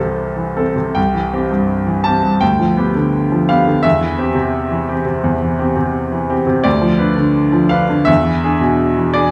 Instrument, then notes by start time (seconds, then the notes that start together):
grand piano
Already playing: C2 E3 C4 A4 C5
0.00 C3
0.36 E3
0.57 C4 A4
0.76 C3
0.95 C2 G5
1.14 E3
1.33 C4 G4
1.51 G2
1.87 E3
2.04 C4 G4 A5
2.23 G2
2.41 D2 G5
2.59 F3
2.77 B3 G4
2.95 D3
3.32 F3
3.49 B3 G4 F5
3.67 D3
3.83 E2 E5
4.01 E3
4.18 C4 G4
4.35 C3
4.71 E3
4.88 C4 G4
5.05 C3
5.24 E2
5.41 E3
5.59 C4 G4
5.76 C3
6.11 E3
6.30 C4 G4
6.47 C3
6.64 D2 D5
6.82 F3
6.98 D4 B4
7.16 D3
7.53 F3
7.69 D4 B4 F5
7.89 D3
8.05 E2 E5
8.24 E3
8.44 D4 G#4
8.61 B2
8.97 E3
9.14 D4 G#4 D5